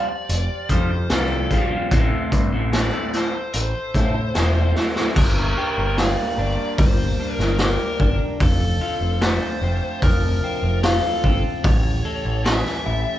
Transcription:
Already playing: tonewheel organ G4 C5 F5 A5, lead electric guitar D5
0.09 muted clean electric guitar stroke
0.29 picked electric bass F1, closed hi-hat
0.69 picked electric bass F2, clean electric guitar F3 G3 C4 F4, lead electric guitar C5, kick, closed hi-hat
0.91 muted clean electric guitar stroke
1.10 picked electric bass C2, clean electric guitar F2 C3 F3 G3 C4 F4, lead electric guitar A4, snare, closed hi-hat
1.51 clean electric guitar F3 G3 C4 F4, kick, closed hi-hat
1.71 clean electric guitar F3 G3 C4 F4
1.91 picked electric bass A1, clean electric guitar A2 E3 A3 C4 E4 A4, tonewheel organ A4 E5 C6, kick, closed hi-hat
2.32 picked electric bass G2, kick, closed hi-hat
2.52 picked electric bass A1, clean electric guitar A3 C4 E4 A4
2.72 clean electric guitar A2 E3 A3 C4 E4 A4, lead electric guitar D5, snare, closed hi-hat
2.93 clean electric guitar A3 C4 E4 A4
3.13 clean electric guitar A3 C4 E4 A4, lead electric guitar C5, snare, closed hi-hat
3.35 muted clean electric guitar stroke
3.53 picked electric bass A1, lead electric guitar C5, closed hi-hat
3.94 picked electric bass A2, clean electric guitar A3 C4 E4 A4, kick, closed hi-hat
4.14 muted clean electric guitar stroke
4.34 picked electric bass E1, clean electric guitar A2 E3 A3 C4 E4 A4, snare, closed hi-hat
4.75 clean electric guitar A3 C4 E4 A4, snare
4.95 clean electric guitar A3 C4 E4 A4, snare
5.16 picked electric bass G1, clean electric guitar G2, tonewheel organ G3 A#3 D4 F4 A#4, lead electric guitar A#4, kick, crash
5.58 clean electric guitar G4
5.78 picked electric bass G1
5.97 clean electric guitar A#3, lead electric guitar D5, snare, open hi-hat
6.38 picked electric bass G1, clean electric guitar D4
6.78 picked electric bass G1, clean electric guitar G3, lead electric guitar C5, kick, open hi-hat
7.20 clean electric guitar D4
7.35 picked electric bass G1, lead electric guitar A#4
7.39 snare
7.59 clean electric guitar G4, lead electric guitar A#4, snare, open hi-hat
8.00 picked electric bass G1, clean electric guitar D4, kick
8.40 picked electric bass F1, clean electric guitar F2, tonewheel organ F3 C4 A5, lead electric guitar A4, kick, open hi-hat
8.81 clean electric guitar F4
9.01 picked electric bass F1
9.21 clean electric guitar A3, lead electric guitar C5, snare, open hi-hat
9.61 picked electric bass F1, clean electric guitar C4
10.02 picked electric bass F1, clean electric guitar F3, lead electric guitar A#4, kick, open hi-hat
10.44 clean electric guitar C4
10.63 picked electric bass F1
10.83 clean electric guitar F4, lead electric guitar A4, snare, open hi-hat
11.24 picked electric bass G1, clean electric guitar C4, kick
11.64 picked electric bass A1, clean electric guitar A2, tonewheel organ E3 A3 C#4 G4, lead electric guitar C#5, kick, open hi-hat
12.05 clean electric guitar A4
12.25 picked electric bass A1
12.45 clean electric guitar C#4, lead electric guitar E5, snare, open hi-hat
12.66 snare
12.86 picked electric bass A1, clean electric guitar E4

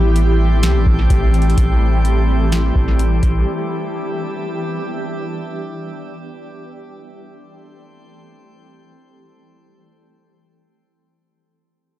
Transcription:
Already playing: 808-style bass A1, ambient pad E3 G3 A3 C4 G4, synth texture A4 G5 C6
0.16 closed hi-hat
0.63 808-style bass C2, snare, closed hi-hat
0.75 808-style bass A1
0.86 808-style bass A1, kick
1.10 808-style bass A1, kick, closed hi-hat
1.34 closed hi-hat
1.42 closed hi-hat
1.50 closed hi-hat
1.58 808-style bass A1, kick, closed hi-hat
2.05 closed hi-hat
2.52 snare, closed hi-hat
2.75 808-style bass A1, kick
2.99 closed hi-hat
3.23 808-style bass A1, kick, closed hi-hat
3.47 ambient pad B3 D4, synth texture G4 E5 D6
7.24 ambient pad E3 G3 A3 C4 G4, synth texture A4 G5 C6
9.14 ambient pad A4

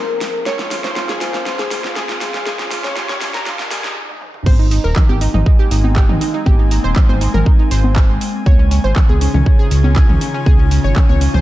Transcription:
Already playing: ambient pad F3 C4 D#4 G#4, soft synth lead A#4, synth pluck C5, riser
0.09 analog synth bass F1
0.21 snare, open hi-hat
0.46 analog synth bass A#1, ambient pad A#3 C#4, soft synth lead C#5, synth pluck C#5, snare
0.59 synth pluck F4, snare
0.71 synth pluck F4, snare, open hi-hat
0.84 analog synth bass G#1, synth pluck C5, snare
0.96 synth pluck F4, snare
1.09 analog synth bass A#1, synth pluck G#4, snare
1.21 synth pluck F4, soft synth lead C5, snare, open hi-hat
1.34 analog synth bass A#1, synth pluck F4, snare
1.46 synth pluck F4, snare
1.59 synth pluck G#4, snare
1.71 analog synth bass A#1, synth pluck F4, snare, open hi-hat
1.84 synth pluck F4, snare
1.96 soft synth lead G#4, synth pluck G#4, snare
2.09 analog synth bass A#1, synth pluck F4, snare
2.21 synth pluck F4, snare, open hi-hat
2.34 synth pluck F4, snare
2.46 analog synth bass A#1, synth pluck G#4, snare
2.59 synth pluck F4, snare
2.71 synth pluck F4, snare, open hi-hat
2.84 synth pluck C#5, snare
2.96 synth pluck F4, soft synth lead G4, snare
3.09 analog synth bass A#1, synth pluck C#5, snare
3.21 synth pluck F4, snare, open hi-hat
3.34 analog synth bass A#1, synth pluck A#4, snare
3.46 synth pluck F4, snare
3.59 synth pluck F4, snare
3.71 analog synth bass A#2, soft synth lead G4, synth pluck G#4, snare, open hi-hat
3.84 snare
4.09 high tom
4.21 mid tom
4.34 mid tom
4.46 analog synth bass G#1, ambient pad G#3 A#3 C4, synth pluck C5, synth texture G#5, kick, crash, high conga
4.59 synth pluck D#4
4.71 synth pluck D#4, open hi-hat
4.84 analog synth bass D#1, synth pluck A#4
4.96 synth pluck D#4, kick, clap, mid tom
5.09 analog synth bass G#1, synth pluck G4, high conga
5.21 synth pluck D#4, open hi-hat
5.34 analog synth bass G#1, synth pluck D#4, mid tom
5.46 synth pluck D#4, kick
5.59 synth pluck G4
5.71 analog synth bass G#1, synth pluck D#4, open hi-hat
5.84 synth pluck D#4, high conga
5.96 synth pluck G4, kick, clap
6.09 analog synth bass G#1, synth pluck D#4, mid tom
6.21 synth pluck D#4, open hi-hat
6.34 synth pluck D#4
6.46 analog synth bass G#1, synth pluck G4, kick, high conga
6.59 synth pluck D#4
6.71 synth pluck D#4, open hi-hat
6.84 analog synth bass D#1, synth pluck C5
6.96 synth pluck D#4, kick, clap, mid tom
7.09 analog synth bass G#1, synth pluck C5, high conga
7.21 synth pluck D#4, open hi-hat
7.34 analog synth bass G#1, synth pluck A#4, mid tom
7.46 synth pluck D#4, kick
7.59 synth pluck D#4
7.71 analog synth bass G#1, synth pluck C5, open hi-hat
7.84 high conga
7.96 kick, clap
8.09 analog synth bass G#1
8.21 open hi-hat
8.46 analog synth bass C#2, ambient pad C#3 C#4 D#4 F4, synth pluck C#5, kick, high conga
8.59 synth pluck C#4
8.71 synth pluck C#4, open hi-hat
8.84 analog synth bass G#1, synth pluck C5
8.96 synth pluck C#4, kick, clap, mid tom
9.09 analog synth bass C#2, synth pluck G#4, high conga
9.21 synth pluck C#4, open hi-hat
9.34 analog synth bass C#2, synth pluck C#4, mid tom
9.46 synth pluck C#4, kick
9.59 synth pluck G#4
9.71 analog synth bass C#2, synth pluck C#4, open hi-hat
9.84 synth pluck C#4, high conga
9.96 synth pluck G#4, kick, clap
10.09 analog synth bass C#2, synth pluck C#4, mid tom
10.21 synth pluck C#4, open hi-hat
10.34 synth pluck C#4
10.46 analog synth bass C#2, synth pluck G#4, kick, high conga
10.59 synth pluck C#4
10.71 synth pluck C#4, open hi-hat
10.84 analog synth bass G#1, synth pluck C#5
10.96 synth pluck C#4, kick, clap, mid tom
11.09 analog synth bass C#2, synth pluck C#5, high conga
11.21 synth pluck C#4, open hi-hat
11.34 analog synth bass C#2, synth pluck C5, mid tom

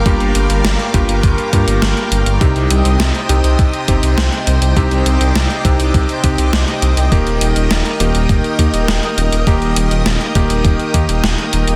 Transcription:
Already playing: string machine A#4 F5 G5 D6
0.06 detuned saw bass G1, electric grand piano G2 A#3 F4 G4, kick, closed hi-hat
0.20 detuned saw bass G1, closed hi-hat
0.35 detuned saw bass G1, closed hi-hat
0.50 detuned saw bass G1, closed hi-hat
0.65 detuned saw bass G1, snare, closed hi-hat
0.79 closed hi-hat
0.94 detuned saw bass G1, electric grand piano G2 A#3 F4 G4, kick, closed hi-hat
1.09 detuned saw bass G1, closed hi-hat
1.23 detuned saw bass G1, kick, closed hi-hat
1.38 closed hi-hat
1.53 detuned saw bass G2, electric grand piano G2 A#3 F4 G4, kick, closed hi-hat
1.67 detuned saw bass G1, closed hi-hat
1.82 detuned saw bass G1, snare, closed hi-hat
1.97 closed hi-hat
2.12 detuned saw bass G1, closed hi-hat
2.26 detuned saw bass G1, closed hi-hat
2.41 detuned saw bass C2, electric grand piano C3 C4 D#4 G4, string machine C5 D#5 D#6, kick, closed hi-hat
2.56 detuned saw bass C2, closed hi-hat
2.70 detuned saw bass C2, closed hi-hat
2.85 detuned saw bass C2, closed hi-hat
3.00 detuned saw bass C2, snare, closed hi-hat
3.15 closed hi-hat
3.29 detuned saw bass C2, electric grand piano C3 C4 D#4 G4, closed hi-hat
3.44 detuned saw bass C2, closed hi-hat
3.59 detuned saw bass C2, kick, closed hi-hat
3.73 closed hi-hat
3.88 detuned saw bass G1, electric grand piano C3 C4 D#4 G4, kick, closed hi-hat
4.03 detuned saw bass C2, closed hi-hat
4.17 detuned saw bass C2, snare, closed hi-hat
4.32 closed hi-hat
4.47 detuned saw bass C2, closed hi-hat
4.62 detuned saw bass C2, closed hi-hat
4.76 detuned saw bass C2, electric grand piano C3 C4 D#4 G4, string machine D6, kick, closed hi-hat
4.91 detuned saw bass C2, closed hi-hat
5.06 detuned saw bass C2, closed hi-hat
5.20 detuned saw bass C2, closed hi-hat
5.35 detuned saw bass C2, snare, closed hi-hat
5.50 closed hi-hat
5.65 detuned saw bass C2, electric grand piano C3 C4 D#4 G4, kick, closed hi-hat
5.79 detuned saw bass C2, closed hi-hat
5.94 detuned saw bass C2, kick, closed hi-hat
6.09 closed hi-hat
6.24 detuned saw bass C2, electric grand piano C3 C4 D#4 G4, kick, closed hi-hat
6.38 detuned saw bass C2, closed hi-hat
6.53 detuned saw bass C2, snare, closed hi-hat
6.68 closed hi-hat
6.82 detuned saw bass C2, closed hi-hat
6.97 detuned saw bass C2, closed hi-hat
7.12 detuned saw bass D#1, electric grand piano D#3 A#3 D#4 G4, string machine A#4 D#6, kick, closed hi-hat
7.26 detuned saw bass D#1, closed hi-hat
7.41 detuned saw bass D#1, closed hi-hat
7.56 detuned saw bass D#1, closed hi-hat
7.71 detuned saw bass D#1, snare, closed hi-hat
7.85 closed hi-hat
8.00 detuned saw bass D#1, electric grand piano D#3 A#3 D#4 G4, closed hi-hat
8.15 detuned saw bass D#1, closed hi-hat
8.29 detuned saw bass D#1, kick, closed hi-hat
8.44 closed hi-hat
8.59 detuned saw bass D#2, electric grand piano D#3 A#3 D#4 G4, kick, closed hi-hat
8.73 detuned saw bass D#1, closed hi-hat
8.88 detuned saw bass D#1, snare, closed hi-hat
9.03 closed hi-hat
9.18 detuned saw bass D#1, closed hi-hat
9.32 detuned saw bass D#1, closed hi-hat
9.47 detuned saw bass D#1, electric grand piano D#3 A#3 D#4 G4, kick, closed hi-hat
9.62 detuned saw bass D#1, closed hi-hat
9.76 detuned saw bass D#1, closed hi-hat
9.91 detuned saw bass D#1, closed hi-hat
10.06 detuned saw bass D#1, snare, closed hi-hat
10.21 closed hi-hat
10.35 detuned saw bass D#1, electric grand piano D#3 A#3 D#4 G4, kick, closed hi-hat
10.50 detuned saw bass D#1, closed hi-hat
10.64 detuned saw bass D#1, kick, closed hi-hat
10.79 closed hi-hat
10.94 detuned saw bass D#2, electric grand piano D#3 A#3 D#4 G4, kick, closed hi-hat
11.09 detuned saw bass D#1, closed hi-hat
11.24 detuned saw bass D#1, snare, closed hi-hat
11.38 closed hi-hat
11.53 detuned saw bass D#1, closed hi-hat
11.68 detuned saw bass D#1, closed hi-hat

